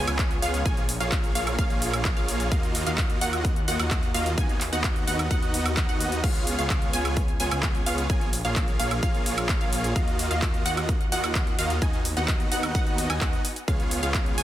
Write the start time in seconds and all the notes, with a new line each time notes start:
0.07 C#2 B3 F4 G#4 C#5 G#5, closed hi-hat, high woodblock, shaker
0.19 kick, clap, closed hi-hat, shaker
0.31 closed hi-hat, shaker
0.42 C#2 B3 F4 G#4 C#5 F5, open hi-hat, shaker
0.54 closed hi-hat, shaker
0.65 A#1 A#3 F4 G#4 G#5, kick, closed hi-hat, shaker
0.77 closed hi-hat, shaker
0.89 open hi-hat, shaker
1.00 A#1 A#3 F4 G#4 C#5 F5, closed hi-hat, shaker
1.12 kick, clap, closed hi-hat, shaker
1.24 closed hi-hat, shaker
1.35 A#1 A#3 F4 G#4 C#5 F5, open hi-hat, shaker
1.47 closed hi-hat, high woodblock, shaker
1.58 A#1 A#3 F4 G#4 C#5 F5, kick, closed hi-hat, shaker
1.70 closed hi-hat, shaker
1.82 open hi-hat, shaker
1.93 closed hi-hat, high woodblock, shaker
2.05 kick, clap, closed hi-hat, shaker
2.17 A#1 A#3 F4 G#4 C#5 F5, closed hi-hat, shaker
2.28 open hi-hat, shaker
2.40 closed hi-hat, shaker
2.52 D#2 A#3 F4 F#4 D#5 F5, kick, closed hi-hat, shaker
2.63 closed hi-hat, shaker
2.75 open hi-hat, shaker
2.86 D#2 A#3 F4 F#4 D#5 F5, closed hi-hat, shaker
2.98 kick, clap, closed hi-hat, shaker
3.10 closed hi-hat, shaker
3.21 D#2 A#3 F4 F#4 D#5 F#5, open hi-hat, shaker
3.33 closed hi-hat, high woodblock, shaker
3.45 kick, closed hi-hat, shaker
3.56 closed hi-hat, shaker
3.68 D#2 A#3 F4 F#4 D#5 F#5, open hi-hat, shaker
3.80 D#2 A#3 F4 F#4 D#5 F#5, closed hi-hat, high woodblock, shaker
3.91 kick, clap, closed hi-hat, shaker
4.03 closed hi-hat, shaker
4.14 D#2 A#3 F4 F#4 D#5 F5, open hi-hat, shaker
4.26 closed hi-hat, shaker
4.38 D#2 B3 D#4 F#4 D#5 G#5, kick, closed hi-hat, shaker
4.49 closed hi-hat, shaker
4.61 clap, open hi-hat, shaker
4.73 D#2 B3 D#4 F#4 D#5 F#5, closed hi-hat, shaker
4.84 kick, clap, closed hi-hat, shaker
4.96 closed hi-hat, shaker
5.07 D#2 B3 D#4 F#4 D#5 F#5, open hi-hat, shaker
5.19 closed hi-hat, high woodblock, shaker
5.31 D#2 B3 D#4 F#4 D#5 F#5, kick, closed hi-hat, shaker
5.42 closed hi-hat, shaker
5.54 open hi-hat, shaker
5.66 closed hi-hat, high woodblock, shaker
5.77 kick, clap, closed hi-hat, shaker
5.89 D#2 B3 D#4 F#4 D#5 F#5, closed hi-hat, shaker
6.01 open hi-hat, shaker
6.12 closed hi-hat, shaker
6.24 C#2 B3 F4 G#4 C#5 F5, kick, closed hi-hat, crash, shaker
6.35 closed hi-hat, shaker
6.47 open hi-hat, shaker
6.59 C#2 B3 F4 G#4 C#5 F5, closed hi-hat, shaker
6.70 kick, clap, closed hi-hat, shaker
6.82 closed hi-hat, shaker
6.93 C#2 B3 F4 G#4 C#5 G#5, open hi-hat, shaker
7.05 closed hi-hat, high woodblock, shaker
7.17 kick, closed hi-hat, shaker
7.28 closed hi-hat, shaker
7.40 C#2 B3 F4 G#4 C#5 G#5, open hi-hat, shaker
7.51 C#2 B3 F4 G#4 C#5 G#5, closed hi-hat, high woodblock, shaker
7.63 kick, clap, closed hi-hat, shaker
7.75 closed hi-hat, shaker
7.86 C#2 B3 F4 G#4 C#5 F5, open hi-hat, shaker
7.98 closed hi-hat, shaker
8.10 A#1 A#3 F4 G#4 C#5 G#5, kick, closed hi-hat, shaker
8.21 closed hi-hat, shaker
8.33 open hi-hat, shaker
8.45 A#1 A#3 F4 G#4 C#5 F5, closed hi-hat, shaker
8.56 kick, clap, closed hi-hat, shaker
8.68 closed hi-hat, shaker
8.79 A#1 A#3 F4 G#4 C#5 F5, open hi-hat, shaker
8.91 closed hi-hat, high woodblock, shaker
9.03 A#1 A#3 F4 G#4 C#5 F5, kick, closed hi-hat, shaker
9.15 closed hi-hat, shaker
9.26 open hi-hat, shaker
9.38 closed hi-hat, high woodblock, shaker
9.49 kick, clap, closed hi-hat, shaker
9.61 A#1 A#3 F4 G#4 C#5 F5, closed hi-hat, shaker
9.73 open hi-hat, shaker
9.84 closed hi-hat, shaker
9.96 D#2 A#3 F4 F#4 D#5 F5, kick, closed hi-hat, shaker
10.08 closed hi-hat, shaker
10.19 open hi-hat, shaker
10.31 D#2 A#3 F4 F#4 D#5 F5, closed hi-hat, shaker
10.42 kick, clap, closed hi-hat, shaker
10.54 closed hi-hat, shaker
10.66 D#2 A#3 F4 F#4 D#5 F#5, open hi-hat, shaker
10.77 closed hi-hat, high woodblock, shaker
10.89 kick, closed hi-hat, shaker
11.01 closed hi-hat, shaker
11.12 D#2 A#3 F4 F#4 D#5 F#5, open hi-hat, shaker
11.24 D#2 A#3 F4 F#4 D#5 F#5, closed hi-hat, high woodblock, shaker
11.35 kick, clap, closed hi-hat, shaker
11.47 closed hi-hat, shaker
11.58 D#2 A#3 F4 F#4 D#5 F5, open hi-hat, shaker
11.70 closed hi-hat, shaker
11.82 D#2 B3 D#4 F#4 D#5 G#5, kick, closed hi-hat, shaker
11.93 closed hi-hat, shaker
12.05 open hi-hat, shaker
12.17 D#2 B3 D#4 F#4 D#5 F#5, closed hi-hat, shaker
12.28 kick, clap, closed hi-hat, shaker
12.40 closed hi-hat, shaker
12.52 D#2 B3 D#4 F#4 D#5 F#5, open hi-hat, shaker
12.63 closed hi-hat, high woodblock, shaker
12.75 D#2 B3 D#4 F#4 D#5 F#5, kick, closed hi-hat, shaker
12.87 closed hi-hat, shaker
12.98 open hi-hat, shaker
13.10 D#2 B3 D#4 F#4 D#5 G#5, closed hi-hat, high woodblock, shaker
13.21 D#2 B3 F#5, kick, clap, closed hi-hat, shaker
13.33 closed hi-hat, shaker
13.45 open hi-hat, shaker
13.56 closed hi-hat, shaker
13.68 C#2 B3 F4 G#4 C#5 F5, kick, closed hi-hat, shaker
13.80 closed hi-hat, shaker
13.91 open hi-hat, shaker
14.03 C#2 B3 F4 G#4 C#5 F5, closed hi-hat, shaker
14.14 kick, clap, closed hi-hat, shaker
14.26 closed hi-hat, shaker
14.38 C#2 B3 F4 G#4 C#5 G#5, open hi-hat, shaker